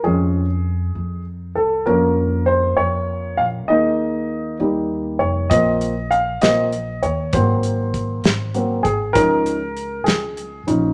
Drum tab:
HH |------|------|------|xxxxxx|
SD |------|------|------|---o--|
BD |------|------|------|o-----|

HH |xxxxxx|xxxxxx|
SD |---o--|---o--|
BD |o-o--o|o-----|